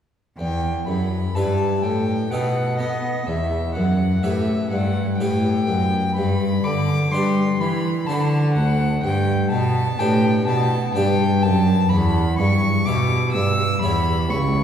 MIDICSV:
0, 0, Header, 1, 4, 480
1, 0, Start_track
1, 0, Key_signature, 1, "minor"
1, 0, Tempo, 964630
1, 194, Time_signature, 3, 2, 24, 8
1, 3073, Tempo, 956938
1, 7317, End_track
2, 0, Start_track
2, 0, Title_t, "Violin"
2, 0, Program_c, 0, 40
2, 193, Note_on_c, 0, 79, 79
2, 417, Note_off_c, 0, 79, 0
2, 436, Note_on_c, 0, 83, 78
2, 673, Note_on_c, 0, 81, 79
2, 680, Note_off_c, 0, 83, 0
2, 911, Note_on_c, 0, 79, 75
2, 918, Note_off_c, 0, 81, 0
2, 1148, Note_on_c, 0, 78, 81
2, 1155, Note_off_c, 0, 79, 0
2, 1383, Note_off_c, 0, 78, 0
2, 1386, Note_on_c, 0, 75, 79
2, 1630, Note_on_c, 0, 76, 83
2, 1637, Note_off_c, 0, 75, 0
2, 1860, Note_off_c, 0, 76, 0
2, 1863, Note_on_c, 0, 78, 76
2, 2104, Note_on_c, 0, 76, 74
2, 2112, Note_off_c, 0, 78, 0
2, 2338, Note_off_c, 0, 76, 0
2, 2341, Note_on_c, 0, 78, 79
2, 2575, Note_off_c, 0, 78, 0
2, 2578, Note_on_c, 0, 79, 87
2, 3054, Note_off_c, 0, 79, 0
2, 3061, Note_on_c, 0, 83, 89
2, 3305, Note_on_c, 0, 86, 96
2, 3313, Note_off_c, 0, 83, 0
2, 3547, Note_on_c, 0, 84, 90
2, 3554, Note_off_c, 0, 86, 0
2, 3789, Note_on_c, 0, 83, 97
2, 3797, Note_off_c, 0, 84, 0
2, 4022, Note_on_c, 0, 81, 92
2, 4030, Note_off_c, 0, 83, 0
2, 4058, Note_on_c, 0, 83, 75
2, 4066, Note_off_c, 0, 81, 0
2, 4090, Note_on_c, 0, 81, 94
2, 4097, Note_off_c, 0, 83, 0
2, 4259, Note_off_c, 0, 81, 0
2, 4262, Note_on_c, 0, 78, 93
2, 4501, Note_off_c, 0, 78, 0
2, 4508, Note_on_c, 0, 79, 93
2, 4742, Note_off_c, 0, 79, 0
2, 4745, Note_on_c, 0, 81, 102
2, 4987, Note_on_c, 0, 79, 98
2, 4995, Note_off_c, 0, 81, 0
2, 5226, Note_off_c, 0, 79, 0
2, 5229, Note_on_c, 0, 81, 101
2, 5464, Note_off_c, 0, 81, 0
2, 5466, Note_on_c, 0, 79, 104
2, 5709, Note_on_c, 0, 81, 102
2, 5716, Note_off_c, 0, 79, 0
2, 5941, Note_on_c, 0, 83, 103
2, 5948, Note_off_c, 0, 81, 0
2, 6185, Note_off_c, 0, 83, 0
2, 6188, Note_on_c, 0, 85, 107
2, 6423, Note_on_c, 0, 86, 111
2, 6431, Note_off_c, 0, 85, 0
2, 6657, Note_off_c, 0, 86, 0
2, 6660, Note_on_c, 0, 88, 106
2, 6901, Note_off_c, 0, 88, 0
2, 6907, Note_on_c, 0, 83, 110
2, 7147, Note_on_c, 0, 85, 94
2, 7154, Note_off_c, 0, 83, 0
2, 7317, Note_off_c, 0, 85, 0
2, 7317, End_track
3, 0, Start_track
3, 0, Title_t, "Harpsichord"
3, 0, Program_c, 1, 6
3, 196, Note_on_c, 1, 40, 46
3, 415, Note_off_c, 1, 40, 0
3, 434, Note_on_c, 1, 42, 51
3, 654, Note_off_c, 1, 42, 0
3, 677, Note_on_c, 1, 43, 47
3, 678, Note_on_c, 1, 64, 39
3, 680, Note_on_c, 1, 67, 39
3, 681, Note_on_c, 1, 71, 42
3, 895, Note_off_c, 1, 43, 0
3, 914, Note_on_c, 1, 45, 46
3, 1022, Note_off_c, 1, 64, 0
3, 1023, Note_off_c, 1, 67, 0
3, 1024, Note_off_c, 1, 71, 0
3, 1134, Note_off_c, 1, 45, 0
3, 1153, Note_on_c, 1, 63, 42
3, 1154, Note_on_c, 1, 47, 51
3, 1157, Note_on_c, 1, 69, 41
3, 1160, Note_on_c, 1, 71, 41
3, 1374, Note_off_c, 1, 47, 0
3, 1388, Note_on_c, 1, 59, 50
3, 1611, Note_off_c, 1, 59, 0
3, 1614, Note_off_c, 1, 63, 0
3, 1616, Note_off_c, 1, 69, 0
3, 1618, Note_off_c, 1, 71, 0
3, 1627, Note_on_c, 1, 40, 48
3, 1851, Note_off_c, 1, 40, 0
3, 1869, Note_on_c, 1, 42, 48
3, 2092, Note_off_c, 1, 42, 0
3, 2105, Note_on_c, 1, 45, 53
3, 2106, Note_on_c, 1, 64, 44
3, 2109, Note_on_c, 1, 67, 40
3, 2109, Note_on_c, 1, 71, 45
3, 2330, Note_off_c, 1, 45, 0
3, 2347, Note_on_c, 1, 43, 51
3, 2454, Note_off_c, 1, 64, 0
3, 2456, Note_off_c, 1, 67, 0
3, 2456, Note_off_c, 1, 71, 0
3, 2570, Note_off_c, 1, 43, 0
3, 2589, Note_on_c, 1, 45, 59
3, 2590, Note_on_c, 1, 67, 45
3, 2591, Note_on_c, 1, 64, 46
3, 2594, Note_on_c, 1, 71, 48
3, 2810, Note_off_c, 1, 45, 0
3, 2823, Note_on_c, 1, 42, 57
3, 2935, Note_off_c, 1, 67, 0
3, 2936, Note_off_c, 1, 64, 0
3, 2938, Note_off_c, 1, 71, 0
3, 3047, Note_off_c, 1, 42, 0
3, 3069, Note_on_c, 1, 43, 52
3, 3291, Note_off_c, 1, 43, 0
3, 3312, Note_on_c, 1, 50, 53
3, 3532, Note_off_c, 1, 50, 0
3, 3552, Note_on_c, 1, 62, 47
3, 3553, Note_on_c, 1, 55, 56
3, 3558, Note_on_c, 1, 67, 46
3, 3558, Note_on_c, 1, 71, 46
3, 3724, Note_off_c, 1, 62, 0
3, 3772, Note_off_c, 1, 55, 0
3, 3796, Note_on_c, 1, 52, 53
3, 3899, Note_off_c, 1, 67, 0
3, 3899, Note_off_c, 1, 71, 0
3, 4012, Note_off_c, 1, 52, 0
3, 4033, Note_on_c, 1, 50, 62
3, 4033, Note_on_c, 1, 62, 47
3, 4037, Note_on_c, 1, 66, 49
3, 4040, Note_on_c, 1, 72, 47
3, 4250, Note_off_c, 1, 50, 0
3, 4274, Note_on_c, 1, 38, 58
3, 4491, Note_off_c, 1, 62, 0
3, 4492, Note_off_c, 1, 38, 0
3, 4493, Note_off_c, 1, 66, 0
3, 4494, Note_off_c, 1, 72, 0
3, 4508, Note_on_c, 1, 43, 59
3, 4728, Note_off_c, 1, 43, 0
3, 4750, Note_on_c, 1, 47, 60
3, 4969, Note_off_c, 1, 47, 0
3, 4990, Note_on_c, 1, 45, 61
3, 4990, Note_on_c, 1, 67, 49
3, 4991, Note_on_c, 1, 62, 50
3, 4994, Note_on_c, 1, 71, 53
3, 5210, Note_off_c, 1, 45, 0
3, 5231, Note_on_c, 1, 47, 58
3, 5336, Note_off_c, 1, 62, 0
3, 5336, Note_off_c, 1, 67, 0
3, 5338, Note_off_c, 1, 71, 0
3, 5450, Note_off_c, 1, 47, 0
3, 5470, Note_on_c, 1, 62, 55
3, 5472, Note_on_c, 1, 43, 67
3, 5474, Note_on_c, 1, 67, 52
3, 5476, Note_on_c, 1, 71, 60
3, 5643, Note_off_c, 1, 62, 0
3, 5691, Note_off_c, 1, 43, 0
3, 5714, Note_on_c, 1, 42, 61
3, 5818, Note_off_c, 1, 67, 0
3, 5819, Note_off_c, 1, 71, 0
3, 5932, Note_off_c, 1, 42, 0
3, 5951, Note_on_c, 1, 40, 65
3, 6170, Note_off_c, 1, 40, 0
3, 6190, Note_on_c, 1, 43, 61
3, 6410, Note_off_c, 1, 43, 0
3, 6430, Note_on_c, 1, 64, 50
3, 6432, Note_on_c, 1, 47, 62
3, 6433, Note_on_c, 1, 67, 53
3, 6433, Note_on_c, 1, 76, 57
3, 6651, Note_off_c, 1, 47, 0
3, 6673, Note_on_c, 1, 43, 63
3, 6776, Note_off_c, 1, 64, 0
3, 6778, Note_off_c, 1, 67, 0
3, 6778, Note_off_c, 1, 76, 0
3, 6892, Note_off_c, 1, 43, 0
3, 6911, Note_on_c, 1, 40, 66
3, 6911, Note_on_c, 1, 64, 54
3, 6914, Note_on_c, 1, 67, 53
3, 6916, Note_on_c, 1, 73, 52
3, 7131, Note_off_c, 1, 40, 0
3, 7153, Note_on_c, 1, 37, 61
3, 7317, Note_off_c, 1, 37, 0
3, 7317, Note_off_c, 1, 64, 0
3, 7317, Note_off_c, 1, 67, 0
3, 7317, Note_off_c, 1, 73, 0
3, 7317, End_track
4, 0, Start_track
4, 0, Title_t, "Cello"
4, 0, Program_c, 2, 42
4, 190, Note_on_c, 2, 40, 63
4, 415, Note_off_c, 2, 40, 0
4, 431, Note_on_c, 2, 42, 56
4, 668, Note_off_c, 2, 42, 0
4, 672, Note_on_c, 2, 43, 61
4, 908, Note_off_c, 2, 43, 0
4, 915, Note_on_c, 2, 45, 60
4, 1149, Note_off_c, 2, 45, 0
4, 1153, Note_on_c, 2, 47, 58
4, 1392, Note_on_c, 2, 59, 60
4, 1400, Note_off_c, 2, 47, 0
4, 1632, Note_off_c, 2, 59, 0
4, 1635, Note_on_c, 2, 40, 67
4, 1872, Note_on_c, 2, 42, 59
4, 1879, Note_off_c, 2, 40, 0
4, 2109, Note_off_c, 2, 42, 0
4, 2112, Note_on_c, 2, 45, 64
4, 2345, Note_off_c, 2, 45, 0
4, 2348, Note_on_c, 2, 43, 63
4, 2585, Note_off_c, 2, 43, 0
4, 2592, Note_on_c, 2, 45, 65
4, 2827, Note_off_c, 2, 45, 0
4, 2832, Note_on_c, 2, 42, 64
4, 3063, Note_off_c, 2, 42, 0
4, 3066, Note_on_c, 2, 43, 68
4, 3305, Note_off_c, 2, 43, 0
4, 3308, Note_on_c, 2, 50, 63
4, 3545, Note_off_c, 2, 50, 0
4, 3548, Note_on_c, 2, 55, 74
4, 3784, Note_off_c, 2, 55, 0
4, 3790, Note_on_c, 2, 52, 70
4, 4024, Note_off_c, 2, 52, 0
4, 4030, Note_on_c, 2, 50, 72
4, 4267, Note_on_c, 2, 38, 72
4, 4275, Note_off_c, 2, 50, 0
4, 4507, Note_off_c, 2, 38, 0
4, 4510, Note_on_c, 2, 43, 76
4, 4745, Note_off_c, 2, 43, 0
4, 4750, Note_on_c, 2, 47, 71
4, 4985, Note_off_c, 2, 47, 0
4, 4987, Note_on_c, 2, 45, 80
4, 5223, Note_off_c, 2, 45, 0
4, 5228, Note_on_c, 2, 47, 70
4, 5464, Note_off_c, 2, 47, 0
4, 5467, Note_on_c, 2, 43, 73
4, 5710, Note_on_c, 2, 42, 75
4, 5717, Note_off_c, 2, 43, 0
4, 5946, Note_off_c, 2, 42, 0
4, 5949, Note_on_c, 2, 40, 84
4, 6187, Note_on_c, 2, 43, 78
4, 6195, Note_off_c, 2, 40, 0
4, 6426, Note_off_c, 2, 43, 0
4, 6429, Note_on_c, 2, 47, 78
4, 6671, Note_on_c, 2, 43, 73
4, 6678, Note_off_c, 2, 47, 0
4, 6906, Note_off_c, 2, 43, 0
4, 6909, Note_on_c, 2, 40, 70
4, 7150, Note_on_c, 2, 37, 77
4, 7157, Note_off_c, 2, 40, 0
4, 7317, Note_off_c, 2, 37, 0
4, 7317, End_track
0, 0, End_of_file